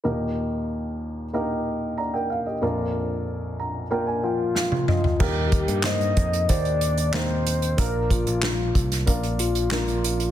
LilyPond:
<<
  \new Staff \with { instrumentName = "Soft synth lead" } { \time 4/4 \key ees \major \tempo 4 = 93 r1 | r2 r8 f'4. | g'4 ees''4 d''4 c''4 | bes'8 f'4. r8 f'4. | }
  \new Staff \with { instrumentName = "Upright piano" } { \time 4/4 \key ees \major << { r2. <d'' bes''>16 <bes' g''>16 f''16 <g' ees''>16~ | <g' ees''>16 r4 r16 bes''8 g''16 aes''16 g''8 f''8 ees''8 | r1 | r1 | } \\ { <bes ees' g' bes'>2 <bes ees' g' bes'>2 | <bes d' f' bes'>2 <bes d' f' bes'>2 | <bes ees' g' bes'>4 <bes ees' g' c''>4 <bes ees' g' c''>4 <bes ees' g' bes'>4 | <bes d' f' bes'>4 <d' f'>4 <bes d' f' bes'>4 <bes d' f' bes'>4 | } >> }
  \new Staff \with { instrumentName = "Upright piano" } { \clef bass \time 4/4 \key ees \major <ees, bes,>1 | <bes,, f,>1 | bes,4. r2 r8 | r1 | }
  \new Staff \with { instrumentName = "Picked electric bass" } { \clef bass \time 4/4 \key ees \major r1 | r1 | ees,8. g,8. f,8 ees,2 | bes,,8. bes,,8. c,8 bes,,2 | }
  \new DrumStaff \with { instrumentName = "Drums" } \drummode { \time 4/4 r4 r4 r4 r4 | r4 r4 r4 sn16 tommh16 toml16 tomfh16 | <cymc bd>8 <hh bd>16 hh16 <hc sn>16 hh16 <hh bd>16 hh16 <hh bd>16 hh16 hh16 hh16 <hc sn>8 hh16 hh16 | <hh bd>8 <hh bd>16 hh16 <hc sn>8 <hh bd>16 <hh sn>16 <hh bd>16 hh16 hh16 hh16 <hc sn>16 hh16 hh16 hh16 | }
>>